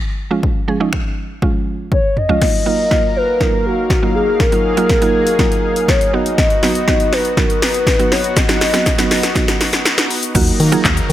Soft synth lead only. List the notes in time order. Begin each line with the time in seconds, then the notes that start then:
1.93 C#5
2.17 D#5
3.16 B4
3.41 A#4
3.66 F#4
4.16 G#4
4.40 A#4
5.89 C#5
6.14 D#5
7.13 B4
7.31 B4
7.38 A#4
7.62 B4
8.12 C#5
8.37 D#5